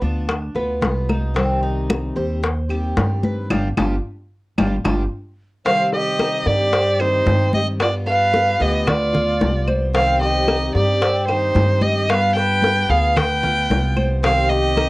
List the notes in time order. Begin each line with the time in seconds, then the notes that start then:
0.01 D2 B3 D4 F4
0.29 muted steel-string acoustic guitar stroke, high bongo, high conga, claves
0.55 D2 B3 F4, high bongo, high conga
0.81 C2 G3 B3 F4, high bongo, low bongo, high conga
1.09 D#4, high bongo, high conga, claves
1.34 C3 D#3 G3 C4 G4, high bongo, high conga
1.63 D#4, high conga
1.90 high bongo, high conga, claves
2.16 D#2 D#3 G3 C4 G4 C5, high conga
2.43 muted steel-string acoustic guitar stroke, high bongo, high conga
2.69 D#3 G3 C4 G4, high conga, claves
2.96 G2 D#3 G3 C4 G4, high bongo, low bongo, high conga
3.23 B4, high conga
3.50 G1 G3 B3 D4 F4 G4, low bongo, high conga, claves
3.77 G1 G3 B3 D4 F4 G4, low bongo, high conga, claves
4.58 G1 G3 B3 D4 F4 G4, low bongo, high conga, claves
4.85 G1 G3 B3 D4 F4 G4, low bongo, high conga, claves
5.65 C3 D#3 G3 C4 G4 C5 F5, high bongo, high conga
5.93 G4 D#5, high bongo, high conga
6.19 D#4, high bongo, high conga, claves
6.45 G2 D#3 G3 C4 G4 D5, high bongo, high conga
6.72 C4, muted steel-string acoustic guitar stroke, high bongo, high conga
7.00 D#3 G3 C4 D#4 G4 C5, high bongo, high conga, claves
7.26 G2 D#3 G3 C4 G4, high bongo, low bongo, high conga
7.53 G4 D#5, high conga
7.80 G3 B3 F4 D5, high bongo, high conga, claves
8.06 D4 B4 F5, high bongo, high conga
8.34 high bongo, high conga
8.60 D2 B3 F4 G4 D#5, high bongo, high conga
8.86 F4 D5, muted steel-string acoustic guitar stroke, high bongo, high conga, low conga, claves
9.13 B3 F4, high bongo, high conga, low conga
9.41 C2 G3 B3 F4, high bongo, low bongo, high conga
9.68 C5, high conga, claves
9.94 C3 D#3 G3 C4 G4 C5 F5, high bongo, high conga
10.21 G4 D#5, high bongo, high conga
10.48 D#4, high bongo, high conga, claves
10.75 G2 D#3 G3 C4 G4 D5, high bongo, high conga
11.01 C4, muted steel-string acoustic guitar stroke, high bongo, high conga
11.28 D#3 G3 C4 D#4 G4 C5, high bongo, high conga, claves
11.55 G2 D#3 G3 C4 G4, high bongo, low bongo, high conga
11.81 G4 D#5, high conga
12.08 G3 B3 F4 B4 F5, high bongo, high conga, claves
12.35 D4 B4 G5, high bongo, high conga
12.62 high bongo, high conga
12.89 D2 B3 F4 G#4 F5, high bongo, high conga
13.16 B4 G5, muted steel-string acoustic guitar stroke, high bongo, high conga, low conga, claves
13.43 B3 F4, high bongo, high conga, low conga
13.70 C2 G3 B3 F4, high bongo, low bongo, high conga
13.97 C5, high conga, claves
14.23 C3 D#3 G3 C4 G4 C5 F5, high bongo, high conga
14.50 G4 D#5, high bongo, high conga
14.77 D#4, high bongo, high conga, claves